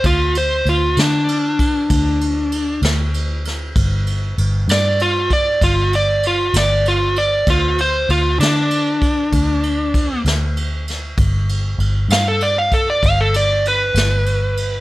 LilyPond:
<<
  \new Staff \with { instrumentName = "Electric slide guitar" } { \time 12/8 \key g \major \tempo 4. = 65 f'8 c''8 f'8 d'2. r4. | r4. d''8 f'8 d''8 f'8 d''8 f'8 d''8 f'8 d''8 | f'8 c''8 f'8 d'2. r4. | r4. f''16 a'16 d''16 f''16 a'16 d''16 f''16 a'16 d''8 b'2 | }
  \new Staff \with { instrumentName = "Fingered electric bass" } { \clef bass \time 12/8 \key g \major d,4 d,8 d4. d,4. d,4. | g,,4 g,,8 g,4. g,,4. g,,4. | d,4 d,8 d4. d,4. d,4. | g,,4 g,,8 g,4. g,,4. g,,4. | }
  \new DrumStaff \with { instrumentName = "Drums" } \drummode { \time 12/8 <bd cymr>8 cymr8 cymr8 <cymr sn>8 cymr8 <bd cymr>8 <bd cymr>8 cymr8 cymr8 <cymr sn>8 cymr8 <cymr sn>8 | <bd cymr>8 cymr8 cymr8 <cymr sn>8 cymr8 <bd cymr>8 <bd cymr>8 cymr8 cymr8 <cymr sn>8 cymr8 cymr8 | <bd cymr>8 cymr8 cymr8 <cymr sn>8 cymr8 <bd cymr>8 <bd cymr>8 cymr8 <bd cymr>8 <cymr sn>8 cymr8 <cymr sn>8 | <bd cymr>8 cymr8 cymr8 <cymr sn>8 cymr8 <bd cymr>8 <bd cymr>8 cymr8 cymr8 <cymr sn>8 cymr8 cymr8 | }
>>